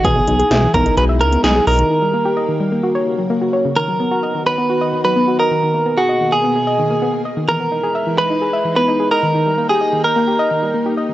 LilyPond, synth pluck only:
\new Staff \with { instrumentName = "Synth pluck" } { \time 4/4 \key b \major \tempo 4 = 129 e16 b16 dis'16 gis'16 e''16 e16 b16 dis'16 gis'16 e''16 r16 b16 dis'16 gis'16 dis''16 dis16 | dis16 g16 ais16 g'16 dis''16 dis16 g16 ais16 fis'16 cis''16 r16 fis16 ais16 fis'16 cis''16 cis16 | dis16 fis16 b16 fis'16 dis''16 dis16 r16 b16 fis'16 dis''16 dis16 fis16 b16 fis'16 dis''16 dis16 | dis16 ais16 b16 gis'16 dis''16 dis16 r16 b16 gis'16 dis''16 dis16 ais16 b16 gis'16 dis''16 dis16 |
e16 b16 dis'16 gis'16 e''16 e16 r16 dis'16 gis'16 e''16 e16 b16 dis'16 gis'16 dis''16 dis16 | dis16 g16 ais16 g'16 dis''16 dis16 r16 ais16 g'16 dis''16 dis16 g16 ais16 g'16 dis''16 dis16 | }